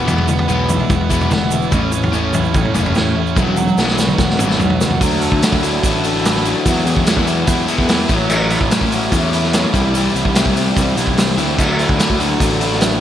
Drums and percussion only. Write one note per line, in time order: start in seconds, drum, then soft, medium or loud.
0.08 floor tom medium
0.08 shaker medium
0.18 floor tom medium
0.28 mid tom medium
0.28 shaker medium
0.39 floor tom medium
0.49 shaker medium
0.69 floor tom medium
0.69 shaker medium
0.80 floor tom medium
0.90 kick loud
0.90 floor tom medium
0.90 shaker medium
1.01 floor tom medium
1.10 kick medium
1.10 shaker loud
1.21 floor tom medium
1.21 shaker soft
1.31 snare medium
1.31 floor tom medium
1.31 mid tom medium
1.31 shaker medium
1.42 mid tom medium
1.51 shaker medium
1.62 shaker soft
1.72 kick loud
1.72 floor tom medium
1.72 shaker medium
1.92 shaker medium
2.04 floor tom medium
2.13 shaker medium
2.33 floor tom loud
2.33 shaker loud
2.44 shaker soft
2.54 kick loud
2.54 floor tom medium
2.54 shaker medium
2.65 floor tom medium
2.75 floor tom medium
2.75 shaker medium
2.86 floor tom medium
2.95 snare medium
2.95 floor tom medium
2.95 shaker medium
3.27 shaker soft
3.36 kick loud
3.36 high tom medium
3.36 shaker medium
3.47 high tom medium
3.57 high tom medium
3.57 shaker medium
3.67 high tom medium
3.67 shaker soft
3.78 snare medium
3.78 shaker medium
3.88 snare medium
3.98 snare medium
3.98 shaker medium
4.08 mid tom medium
4.08 shaker soft
4.18 kick loud
4.18 snare medium
4.18 shaker medium
4.30 snare medium
4.39 mid tom medium
4.39 shaker loud
4.50 snare medium
4.59 floor tom medium
4.59 shaker medium
4.70 floor tom medium
4.81 snare loud
4.81 shaker loud
4.90 floor tom medium
5.01 kick loud
5.01 open hi-hat medium
5.01 shaker medium
5.21 open hi-hat medium
5.21 shaker medium
5.32 kick medium
5.42 snare loud
5.42 open hi-hat medium
5.42 shaker loud
5.53 kick medium
5.63 open hi-hat medium
5.63 shaker medium
5.83 kick loud
5.83 open hi-hat medium
5.83 shaker loud
6.04 open hi-hat medium
6.04 shaker medium
6.16 snare soft
6.25 snare loud
6.25 open hi-hat medium
6.25 shaker medium
6.45 open hi-hat medium
6.45 shaker medium
6.66 kick loud
6.66 open hi-hat medium
6.66 shaker medium
6.86 open hi-hat medium
6.86 shaker medium
6.97 kick medium
7.06 snare loud
7.06 open hi-hat medium
7.06 shaker loud
7.17 kick medium
7.27 open hi-hat medium
7.27 shaker medium
7.47 kick loud
7.47 open hi-hat medium
7.47 shaker medium
7.68 open hi-hat medium
7.68 shaker medium
7.78 kick medium
7.78 snare soft
7.89 snare loud
7.89 open hi-hat medium
7.89 shaker medium
8.09 kick loud
8.09 open hi-hat medium
8.09 shaker medium
8.30 crash loud
8.30 shaker medium
8.50 open hi-hat medium
8.50 shaker medium
8.61 kick medium
8.71 snare loud
8.71 open hi-hat medium
8.71 shaker loud
8.81 kick medium
8.92 open hi-hat medium
8.92 shaker medium
9.12 kick loud
9.12 open hi-hat medium
9.12 shaker medium
9.33 open hi-hat medium
9.33 shaker medium
9.44 snare soft
9.53 snare loud
9.53 open hi-hat medium
9.53 shaker medium
9.74 kick loud
9.74 open hi-hat medium
9.74 shaker medium
9.95 open hi-hat medium
9.95 shaker medium
10.16 open hi-hat medium
10.16 shaker medium
10.25 kick medium
10.35 snare loud
10.35 open hi-hat medium
10.35 shaker medium
10.46 kick medium
10.57 open hi-hat medium
10.57 shaker medium
10.77 kick loud
10.77 open hi-hat medium
10.77 shaker medium
10.97 open hi-hat medium
10.97 shaker medium
11.07 kick medium
11.17 snare loud
11.17 open hi-hat medium
11.17 shaker loud
11.38 open hi-hat medium
11.38 shaker medium
11.59 kick loud
11.59 crash loud
11.59 shaker medium
11.79 open hi-hat medium
11.79 shaker medium
11.89 kick medium
11.99 snare loud
11.99 open hi-hat medium
11.99 shaker loud
12.10 kick medium
12.20 open hi-hat medium
12.20 shaker medium
12.40 kick loud
12.40 open hi-hat medium
12.40 shaker medium
12.61 open hi-hat medium
12.61 shaker medium
12.72 snare soft
12.81 snare loud
12.81 open hi-hat medium
12.81 shaker medium